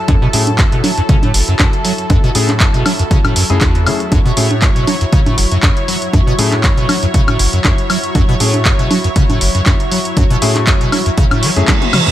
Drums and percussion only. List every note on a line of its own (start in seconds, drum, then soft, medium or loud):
0.08 kick loud
0.08 closed hi-hat medium
0.08 high conga medium
0.33 open hi-hat loud
0.47 closed hi-hat medium
0.47 high conga soft
0.58 kick loud
0.58 clap loud
0.58 closed hi-hat medium
0.72 closed hi-hat soft
0.84 open hi-hat loud
0.84 high conga medium
0.98 closed hi-hat medium
1.09 kick loud
1.09 closed hi-hat medium
1.23 closed hi-hat soft
1.23 high conga soft
1.34 open hi-hat loud
1.48 closed hi-hat medium
1.59 kick loud
1.59 clap loud
1.59 closed hi-hat medium
1.59 high conga medium
1.73 closed hi-hat soft
1.85 open hi-hat loud
1.98 closed hi-hat medium
2.10 kick loud
2.10 closed hi-hat medium
2.10 high conga medium
2.35 open hi-hat loud
2.49 clap soft
2.49 closed hi-hat soft
2.49 high conga soft
2.60 kick loud
2.60 clap loud
2.60 closed hi-hat medium
2.74 closed hi-hat soft
2.86 open hi-hat loud
2.86 high conga medium
2.86 high woodblock medium
2.99 closed hi-hat medium
3.11 kick loud
3.11 closed hi-hat medium
3.25 closed hi-hat soft
3.25 high conga soft
3.25 high woodblock medium
3.36 open hi-hat loud
3.50 closed hi-hat medium
3.61 kick loud
3.61 clap loud
3.61 closed hi-hat medium
3.61 high conga medium
3.75 closed hi-hat soft
3.87 open hi-hat medium
3.87 high woodblock medium
4.00 closed hi-hat medium
4.12 kick loud
4.12 closed hi-hat medium
4.12 high conga medium
4.37 open hi-hat loud
4.51 high conga soft
4.62 kick loud
4.62 clap loud
4.62 closed hi-hat medium
4.76 closed hi-hat soft
4.87 open hi-hat loud
4.87 high conga medium
5.01 closed hi-hat medium
5.13 kick loud
5.13 closed hi-hat medium
5.26 closed hi-hat soft
5.26 high conga soft
5.38 open hi-hat loud
5.52 closed hi-hat medium
5.63 kick loud
5.63 clap loud
5.63 closed hi-hat medium
5.63 high conga medium
5.77 closed hi-hat soft
5.88 open hi-hat loud
6.02 closed hi-hat medium
6.13 kick loud
6.13 closed hi-hat medium
6.13 high conga medium
6.39 open hi-hat loud
6.52 clap soft
6.52 closed hi-hat medium
6.52 high conga soft
6.64 kick loud
6.64 clap loud
6.64 closed hi-hat medium
6.78 closed hi-hat soft
6.89 open hi-hat medium
6.89 high conga medium
6.89 high woodblock medium
7.03 closed hi-hat medium
7.14 kick loud
7.14 closed hi-hat medium
7.28 closed hi-hat soft
7.28 high conga soft
7.28 high woodblock medium
7.39 open hi-hat loud
7.53 closed hi-hat medium
7.64 kick loud
7.64 clap loud
7.64 closed hi-hat medium
7.64 high conga medium
7.78 closed hi-hat soft
7.90 open hi-hat medium
7.90 high woodblock medium
8.04 closed hi-hat medium
8.15 kick loud
8.15 closed hi-hat medium
8.15 high conga medium
8.40 open hi-hat loud
8.54 closed hi-hat medium
8.54 high conga soft
8.65 kick loud
8.65 clap loud
8.65 closed hi-hat medium
8.79 closed hi-hat soft
8.91 open hi-hat medium
8.91 high conga medium
9.04 closed hi-hat medium
9.16 kick loud
9.16 closed hi-hat medium
9.30 closed hi-hat soft
9.30 high conga soft
9.41 open hi-hat loud
9.55 closed hi-hat medium
9.66 kick loud
9.66 clap loud
9.66 closed hi-hat medium
9.66 high conga medium
9.80 closed hi-hat soft
9.92 open hi-hat medium
10.05 closed hi-hat medium
10.17 kick loud
10.17 closed hi-hat medium
10.17 high conga medium
10.30 closed hi-hat soft
10.42 open hi-hat loud
10.55 clap soft
10.55 closed hi-hat medium
10.55 high conga soft
10.67 kick loud
10.67 clap loud
10.67 closed hi-hat medium
10.81 closed hi-hat soft
10.92 open hi-hat medium
10.92 high conga medium
10.92 high woodblock medium
11.06 closed hi-hat medium
11.18 kick loud
11.18 closed hi-hat medium
11.31 closed hi-hat soft
11.31 high conga soft
11.31 high woodblock medium
11.43 open hi-hat loud
11.56 closed hi-hat medium
11.68 kick loud
11.68 clap loud
11.68 closed hi-hat medium
11.68 high tom medium
11.68 high conga medium
11.82 closed hi-hat soft
11.82 high tom medium
11.93 open hi-hat medium
11.93 mid tom medium
11.93 high woodblock medium
12.07 closed hi-hat medium
12.07 mid tom medium